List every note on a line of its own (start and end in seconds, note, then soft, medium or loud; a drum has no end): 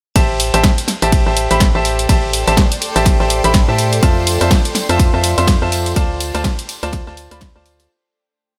0.16 0.51 A1 loud
0.16 0.51 G4 medium
0.16 7.90 A4 medium
0.16 0.51 C5 medium
0.16 0.51 E5 medium
0.16 0.51 A5 loud
0.16 kick loud
0.16 closed hi-hat medium
0.16 ride medium
0.16 tambourine medium
0.40 open hi-hat loud
0.40 tambourine medium
0.54 0.66 A1 medium
0.54 0.69 G4 medium
0.54 0.69 C5 medium
0.54 0.69 E5 medium
0.54 0.69 A5 medium
0.54 closed hi-hat medium
0.54 closed hi-hat soft
0.58 7.90 D5 medium
0.64 kick loud
0.64 snare loud
0.64 ride medium
0.64 tambourine medium
0.72 7.90 G5 medium
0.72 7.90 C6 medium
0.78 closed hi-hat medium
0.88 snare medium
0.88 open hi-hat medium
0.88 tambourine medium
1.02 1.24 A1 loud
1.02 1.23 G4 loud
1.02 1.23 C5 medium
1.02 1.23 E5 medium
1.02 1.23 A5 loud
1.02 closed hi-hat medium
1.12 kick loud
1.12 closed hi-hat medium
1.12 ride medium
1.12 tambourine medium
1.26 1.48 A1 medium
1.26 1.47 G4 medium
1.26 1.47 C5 medium
1.26 1.47 E5 medium
1.26 1.47 A5 medium
1.37 open hi-hat loud
1.37 tambourine medium
1.51 1.72 A1 medium
1.51 1.66 G4 medium
1.51 1.66 C5 medium
1.51 1.66 E5 medium
1.51 1.66 B5 medium
1.51 closed hi-hat medium
1.60 kick loud
1.60 snare loud
1.60 closed hi-hat medium
1.60 ride medium
1.60 tambourine medium
1.75 2.07 A1 loud
1.75 2.07 G4 medium
1.75 2.07 C5 medium
1.75 2.07 E5 medium
1.75 2.07 A5 medium
1.85 open hi-hat loud
1.85 tambourine medium
1.99 closed hi-hat medium
2.09 2.45 A1 loud
2.09 2.44 G4 medium
2.09 2.44 C5 medium
2.09 2.44 E5 medium
2.09 2.44 A5 loud
2.09 kick loud
2.09 closed hi-hat medium
2.09 ride medium
2.09 tambourine medium
2.33 open hi-hat loud
2.33 tambourine medium
2.47 2.60 A1 loud
2.47 2.63 G4 medium
2.47 2.63 C5 medium
2.47 2.63 E5 medium
2.47 2.63 A5 medium
2.47 snare soft
2.47 closed hi-hat medium
2.57 kick loud
2.57 snare loud
2.57 ride medium
2.57 tambourine medium
2.72 closed hi-hat medium
2.82 open hi-hat medium
2.82 tambourine medium
2.96 3.17 A1 loud
2.96 3.17 G4 loud
2.96 3.17 C5 medium
2.96 3.17 E5 medium
2.96 3.17 A5 loud
2.96 snare soft
2.96 closed hi-hat medium
3.05 kick loud
3.05 snare medium
3.05 closed hi-hat medium
3.05 ride medium
3.05 tambourine medium
3.20 3.41 A1 medium
3.20 3.41 G4 medium
3.20 3.41 C5 medium
3.20 3.41 E5 medium
3.20 3.41 A5 loud
3.20 snare medium
3.30 open hi-hat loud
3.30 tambourine medium
3.44 3.66 A1 loud
3.44 3.59 G4 medium
3.44 3.59 C5 medium
3.44 3.59 E5 medium
3.44 3.59 B5 medium
3.44 closed hi-hat medium
3.54 kick loud
3.54 snare loud
3.54 closed hi-hat medium
3.54 ride medium
3.54 tambourine medium
3.68 4.01 A2 loud
3.68 4.00 G4 medium
3.68 4.00 C5 medium
3.68 4.00 E5 medium
3.68 4.00 A5 loud
3.79 open hi-hat medium
3.79 tambourine medium
3.93 closed hi-hat medium
4.02 4.38 F2 loud
4.02 4.38 F4 loud
4.02 4.38 C5 medium
4.02 4.38 E5 medium
4.02 4.38 A5 loud
4.02 kick loud
4.02 closed hi-hat medium
4.02 ride medium
4.02 tambourine soft
4.02 tambourine medium
4.27 open hi-hat loud
4.27 tambourine medium
4.41 4.53 F2 loud
4.41 4.56 F4 medium
4.41 4.56 C5 medium
4.41 4.56 E5 medium
4.41 4.56 A5 medium
4.41 closed hi-hat medium
4.41 closed hi-hat soft
4.41 tambourine medium
4.51 kick loud
4.51 snare loud
4.51 ride medium
4.51 tambourine medium
4.51 tambourine soft
4.65 closed hi-hat medium
4.75 snare medium
4.75 open hi-hat loud
4.75 tambourine medium
4.89 5.11 F2 loud
4.89 5.10 F4 loud
4.89 5.10 C5 medium
4.89 5.10 E5 medium
4.89 5.10 A5 loud
4.89 closed hi-hat medium
4.89 tambourine medium
4.99 kick loud
4.99 closed hi-hat medium
4.99 ride medium
4.99 tambourine soft
4.99 tambourine medium
5.14 5.35 F2 loud
5.14 5.34 F4 medium
5.14 5.34 C5 medium
5.14 5.34 E5 medium
5.14 5.34 A5 loud
5.23 open hi-hat loud
5.23 tambourine medium
5.38 5.59 F2 loud
5.38 5.53 F4 medium
5.38 5.53 C5 medium
5.38 5.53 E5 medium
5.38 5.53 C6 medium
5.38 closed hi-hat medium
5.38 tambourine medium
5.47 kick loud
5.47 snare loud
5.47 closed hi-hat medium
5.47 ride medium
5.47 tambourine soft
5.47 tambourine medium
5.62 5.94 F2 loud
5.62 5.94 F4 medium
5.62 5.94 C5 medium
5.62 5.94 E5 medium
5.62 5.94 A5 loud
5.72 open hi-hat loud
5.72 tambourine medium
5.72 tambourine loud
5.86 closed hi-hat medium
5.86 tambourine medium
5.96 6.32 D2 loud
5.96 6.31 F4 loud
5.96 6.31 C5 medium
5.96 6.31 D5 medium
5.96 6.31 A5 loud
5.96 kick loud
5.96 closed hi-hat medium
5.96 ride medium
5.96 tambourine medium
6.20 open hi-hat loud
6.20 tambourine medium
6.20 tambourine loud
6.35 6.47 D2 loud
6.35 6.50 F4 medium
6.35 6.50 C5 medium
6.35 6.50 D5 medium
6.35 6.50 A5 medium
6.35 snare soft
6.35 closed hi-hat medium
6.35 tambourine medium
6.44 kick loud
6.44 snare loud
6.44 ride medium
6.44 tambourine medium
6.59 closed hi-hat medium
6.69 open hi-hat loud
6.69 tambourine medium
6.83 7.04 D2 loud
6.83 7.04 F4 loud
6.83 7.04 C5 medium
6.83 7.04 D5 medium
6.83 7.04 A5 loud
6.83 closed hi-hat medium
6.83 tambourine medium
6.93 kick loud
6.93 snare medium
6.93 closed hi-hat medium
6.93 ride medium
6.93 tambourine medium
7.07 7.29 D2 loud
7.07 7.28 F4 medium
7.07 7.28 C5 medium
7.07 7.28 D5 medium
7.07 7.28 A5 loud
7.07 snare medium
7.17 open hi-hat loud
7.17 tambourine medium
7.31 7.53 D2 loud
7.31 7.46 F4 medium
7.31 7.46 C5 medium
7.31 7.46 D5 medium
7.31 7.46 B5 medium
7.31 closed hi-hat medium
7.31 tambourine medium
7.41 kick loud
7.41 snare loud
7.41 closed hi-hat medium
7.41 ride medium
7.41 tambourine soft
7.41 tambourine medium
7.56 7.88 D2 loud
7.56 7.87 F4 medium
7.56 7.87 C5 medium
7.56 7.87 D5 medium
7.56 7.87 A5 loud
7.66 open hi-hat loud
7.66 tambourine medium
7.79 snare loud
7.79 closed hi-hat medium
7.79 tambourine medium